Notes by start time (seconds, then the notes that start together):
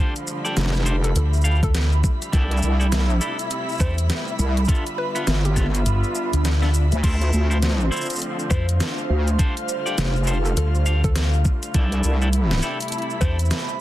Already playing: D3 F3 A3 D4 G4 B5
0.00 G3 A4 C5
0.16 closed hi-hat, shaker
0.27 shaker
0.45 D4 G4 A4 D5, shaker
0.56 F1 E5, snare, closed hi-hat, shaker
0.61 snare
0.66 snare
0.70 snare
0.75 snare, shaker
0.78 snare
0.80 snare
0.83 D4 G4 A4 C5, snare, shaker
1.04 A4, closed hi-hat, shaker
1.16 D2 A4, closed hi-hat, shaker
1.34 shaker
1.36 shaker
1.41 A4 F5, shaker
1.45 D4 G4, shaker
1.51 shaker
1.55 shaker
1.63 A4, kick, closed hi-hat, shaker
1.75 snare, closed hi-hat, shaker
1.92 shaker
2.04 kick, shaker
2.22 closed hi-hat, shaker
2.32 C2 C3 D4 E4 G4 A4, kick, closed hi-hat, shaker
2.51 closed hi-hat
2.57 shaker
2.63 C2, shaker
2.80 D4 E4 G4 A4, shaker
2.92 snare, closed hi-hat, shaker
3.03 B1
3.10 shaker
3.21 D4 E4 G4 A4, shaker
3.39 closed hi-hat, shaker
3.51 closed hi-hat, shaker
3.69 shaker
3.72 shaker
3.75 shaker
3.78 E2 E4 A4, kick, shaker
3.80 D4 G4 C5, shaker
3.89 shaker
3.94 shaker
3.98 closed hi-hat, shaker
4.10 snare, closed hi-hat, shaker
4.28 shaker
4.39 C2, shaker
4.57 closed hi-hat, shaker
4.65 D3 B3 D4 F4 A4, kick, closed hi-hat, shaker
4.69 B3, shaker
4.75 shaker
4.87 closed hi-hat, shaker
4.98 B4
5.15 B3 D4 F4 B4, closed hi-hat, shaker
5.27 G1, snare, closed hi-hat, shaker
5.45 G4, closed hi-hat, shaker
5.56 B3 D4 F4 A4, kick, snare, shaker
5.61 snare
5.66 snare
5.70 snare
5.75 closed hi-hat, shaker
5.86 G1, closed hi-hat, swell, shaker
6.04 shaker
6.15 shaker
6.33 D2, closed hi-hat, shaker
6.45 snare, closed hi-hat, shaker
6.62 B3 D4 F4 A4, snare, shaker
6.74 shaker
6.92 D2, closed hi-hat, shaker
7.03 D2 F3 A3 C4 E4 F4 A4 C5, kick, closed hi-hat, crash, shaker
7.22 closed hi-hat, shaker
7.33 D2, shaker
7.50 E4 F4 A4 C5, shaker
7.63 snare, closed hi-hat, shaker
7.80 shaker
7.91 E4 F4 A4 C5 F5, shaker
7.96 shaker
8.01 shaker
8.06 shaker
8.10 closed hi-hat, shaker
8.13 shaker
8.16 shaker
8.19 closed hi-hat, shaker
8.22 shaker
8.39 shaker
8.50 F2 E4 F4 A4 C5, kick, shaker
8.69 closed hi-hat, shaker
8.80 snare, closed hi-hat, shaker
8.98 shaker
9.10 D2
9.28 closed hi-hat, shaker
9.39 G3 D4 F4 G4 A4 C5, kick, closed hi-hat, shaker
9.57 closed hi-hat, shaker
9.69 shaker
9.86 D4 G4 A4 D5, shaker
9.98 F1, snare, closed hi-hat, shaker
10.16 shaker
10.24 C5, shaker
10.27 D4 G4 A4, shaker
10.33 shaker
10.45 A4, shaker
10.57 D2 A4, closed hi-hat, shaker
10.75 shaker
10.86 D4 G4 A4 F5, shaker
11.04 A4, kick, closed hi-hat, shaker
11.16 snare, closed hi-hat, shaker
11.33 shaker
11.45 kick, shaker
11.63 closed hi-hat, shaker
11.74 C2 C3 D4 E4 G4 A4 B5, kick, closed hi-hat, shaker
11.92 closed hi-hat, shaker
12.04 C2, shaker
12.22 D4 E4 G4 A4, shaker
12.32 A5, closed hi-hat, shaker
12.48 E5, snare, shaker
12.62 D4 E4 G4 A4, shaker
12.81 closed hi-hat, shaker
12.82 closed hi-hat
12.88 closed hi-hat
12.92 closed hi-hat, shaker
12.98 closed hi-hat
13.02 closed hi-hat
13.10 shaker
13.21 E2 D4 E4 G4 A4 C5, kick, shaker
13.39 closed hi-hat, shaker
13.45 shaker
13.51 snare, closed hi-hat, shaker
13.60 shaker
13.69 shaker